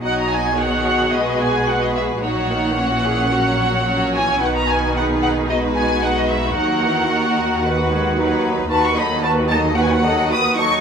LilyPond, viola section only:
\new Staff \with { instrumentName = "Viola section" } { \clef bass \time 4/4 \key b \major \tempo 4 = 111 << { dis'4 fis'2. | dis'4 cis'2 cis'4 | dis'2. dis'4 | dis'4 fis'8 fis'4. dis'4 |
\key b \mixolydian fis'8 dis'8 fis'8 dis'8 fis'8 dis'8 fis'8 dis'8 | } \\ { fis4 dis4 gis2 | fis8 dis8 e4 fis4 fis8 e8 | dis2 gis2 | fis8 e8 dis4 dis8 gis8 fis4 |
dis8 fis8 dis8 fis8 dis8 fis8 dis8 fis8 | } >> }